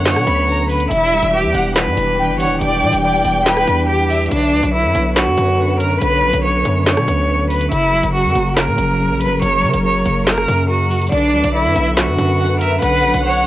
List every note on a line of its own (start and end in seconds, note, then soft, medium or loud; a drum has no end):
0.00 0.18 F#2 loud
0.00 0.06 D3 loud
0.00 0.87 D3 medium
0.00 0.48 F#3 medium
0.00 0.87 B3 medium
0.00 0.93 B3 medium
0.00 0.27 C#4 medium
0.00 0.87 B4 medium
0.00 0.23 F#5 loud
0.06 0.47 D3 medium
0.06 0.66 C#5 medium
0.06 snare loud
0.06 clap loud
0.06 closed hi-hat medium
0.16 0.26 B2 loud
0.16 cross-stick loud
0.27 0.88 D2 loud
0.27 0.91 C#4 medium
0.27 0.47 B5 medium
0.27 closed hi-hat medium
0.48 0.91 D3 medium
0.48 0.68 A#5 medium
0.70 0.87 B4 medium
0.70 0.90 B5 medium
0.70 open hi-hat medium
0.80 closed hi-hat medium
0.91 1.21 E1 loud
0.91 1.32 E3 medium
0.91 4.28 E3 medium
0.91 4.28 D4 medium
0.91 1.31 E4 loud
0.91 4.28 G4 medium
0.91 1.51 E5 loud
0.91 closed hi-hat medium
1.12 2.18 G3 medium
1.23 1.45 E1 loud
1.23 closed hi-hat medium
1.33 1.75 E3 medium
1.33 1.73 G4 medium
1.44 1.54 E2 loud
1.54 1.88 E1 loud
1.54 2.61 B3 medium
1.54 1.75 F#5 medium
1.54 closed hi-hat medium
1.76 2.17 E3 medium
1.76 2.36 B4 medium
1.76 snare loud
1.76 clap loud
1.76 closed hi-hat medium
1.87 1.97 G2 loud
1.97 2.31 E1 loud
1.97 3.04 D4 medium
1.97 closed hi-hat medium
2.18 2.60 E3 medium
2.18 2.39 G5 medium
2.29 2.47 G1 loud
2.40 2.56 C#5 medium
2.40 2.60 F#5 medium
2.40 closed hi-hat medium
2.45 2.60 E1 loud
2.61 2.84 E1 loud
2.61 3.03 E3 medium
2.61 3.01 D5 loud
2.61 4.06 G5 loud
2.61 closed hi-hat medium
2.82 2.92 B2 loud
2.82 3.89 G3 medium
2.93 3.24 E1 loud
2.93 closed hi-hat medium
3.04 3.45 E3 medium
3.04 3.44 D5 medium
3.25 3.66 E1 loud
3.25 4.31 B3 medium
3.25 closed hi-hat medium
3.45 3.87 E3 medium
3.45 3.86 B4 loud
3.45 snare loud
3.45 clap loud
3.45 closed hi-hat medium
3.57 cross-stick medium
3.67 4.29 E2 loud
3.67 4.31 D4 medium
3.67 closed hi-hat medium
3.88 4.31 E3 medium
3.88 4.29 G4 medium
4.10 4.30 E5 medium
4.10 open hi-hat medium
4.21 closed hi-hat medium
4.26 closed hi-hat medium
4.31 4.54 B1 loud
4.31 4.73 D3 medium
4.31 7.68 D3 medium
4.31 4.71 D4 loud
4.31 7.68 B4 medium
4.31 7.68 C#5 medium
4.31 closed hi-hat medium
4.37 closed hi-hat medium
4.52 4.63 D2 loud
4.52 5.59 F#3 medium
4.63 4.86 B1 loud
4.63 closed hi-hat medium
4.74 5.15 D3 medium
4.74 5.14 E4 medium
4.84 4.95 F#2 loud
4.95 5.29 B1 loud
4.95 6.01 B3 medium
4.95 closed hi-hat medium
5.16 5.57 D3 medium
5.16 5.76 F#4 medium
5.16 snare loud
5.16 clap loud
5.16 closed hi-hat medium
5.27 5.37 F#2 loud
5.38 5.99 F#2 loud
5.38 6.44 C#4 medium
5.38 closed hi-hat medium
5.59 6.00 D3 medium
5.80 5.97 A#4 medium
5.80 closed hi-hat medium
6.01 6.24 B1 loud
6.01 6.43 D3 medium
6.01 6.41 B4 loud
6.01 closed hi-hat medium
6.23 6.33 A#1 loud
6.23 7.29 F#3 medium
6.33 6.64 B1 loud
6.33 closed hi-hat medium
6.44 6.85 D3 medium
6.44 6.84 C#5 medium
6.65 6.99 F#2 loud
6.65 7.72 B3 medium
6.65 closed hi-hat medium
6.86 7.28 D3 medium
6.86 7.46 C#5 medium
6.86 snare loud
6.86 clap loud
6.86 closed hi-hat medium
6.97 7.07 B2 loud
6.97 cross-stick loud
7.08 7.69 D2 loud
7.08 7.72 C#4 medium
7.08 closed hi-hat medium
7.30 7.72 D3 medium
7.50 7.67 B4 medium
7.50 open hi-hat medium
7.61 closed hi-hat medium
7.72 8.02 F#1 loud
7.72 8.13 C#3 loud
7.72 11.09 F#3 medium
7.72 8.12 E4 loud
7.72 11.09 A#4 medium
7.72 closed hi-hat medium
7.93 8.99 F#3 medium
8.03 8.26 F#1 loud
8.03 closed hi-hat medium
8.14 8.55 C#3 medium
8.14 8.54 F#4 medium
8.25 8.35 F#2 loud
8.35 8.69 F#1 loud
8.35 9.42 A#3 medium
8.35 closed hi-hat medium
8.57 8.98 C#3 loud
8.57 9.17 A#4 medium
8.57 snare loud
8.57 clap loud
8.57 closed hi-hat medium
8.67 8.78 A#2 loud
8.78 9.11 F#1 loud
8.78 9.84 C#4 medium
8.78 closed hi-hat medium
8.99 9.41 C#3 medium
9.10 9.27 A#1 loud
9.21 9.38 B4 medium
9.21 closed hi-hat medium
9.26 9.41 F#1 loud
9.42 9.65 F#1 loud
9.42 9.83 C#3 loud
9.42 9.82 C#5 loud
9.42 closed hi-hat medium
9.63 9.73 C#3 loud
9.63 10.70 F#3 medium
9.74 10.04 F#1 loud
9.74 closed hi-hat medium
9.84 10.25 C#3 medium
9.84 10.25 C#5 medium
10.05 10.47 F#1 loud
10.05 11.12 A#3 medium
10.05 closed hi-hat medium
10.27 10.69 C#3 medium
10.27 10.67 A#4 loud
10.27 snare loud
10.27 clap loud
10.27 closed hi-hat medium
10.38 cross-stick loud
10.48 11.10 F#2 loud
10.48 11.12 C#4 medium
10.48 closed hi-hat medium
10.69 11.12 C#3 medium
10.69 11.09 F#4 medium
10.91 open hi-hat medium
11.01 closed hi-hat medium
11.07 closed hi-hat medium
11.12 11.35 B1 loud
11.12 11.53 D3 medium
11.12 13.47 D3 medium
11.12 11.52 D4 loud
11.12 13.47 B4 medium
11.12 11.72 D5 loud
11.12 closed hi-hat medium
11.17 closed hi-hat medium
11.33 11.43 D2 loud
11.33 12.40 F#3 medium
11.44 11.67 B1 loud
11.44 closed hi-hat medium
11.54 11.96 D3 medium
11.54 11.94 E4 medium
11.65 11.75 F#2 loud
11.76 12.09 B1 loud
11.76 12.82 B3 medium
11.76 11.96 E5 medium
11.76 closed hi-hat medium
11.97 12.39 D3 loud
11.97 12.57 F#4 medium
11.97 snare loud
11.97 clap loud
11.97 closed hi-hat medium
12.08 12.18 F#2 loud
12.18 12.80 F#2 loud
12.18 13.25 C#4 medium
12.18 closed hi-hat medium
12.40 12.81 D3 medium
12.40 12.60 F#5 medium
12.60 12.77 A#4 medium
12.60 12.81 E5 medium
12.60 closed hi-hat medium
12.81 13.05 B1 loud
12.81 13.23 D3 medium
12.81 13.22 B4 loud
12.81 13.47 F#5 loud
12.81 closed hi-hat medium
13.04 13.14 A#1 loud
13.04 13.47 F#3 medium
13.14 13.45 B1 loud
13.14 closed hi-hat medium
13.25 13.47 D3 medium
13.25 13.47 C#5 medium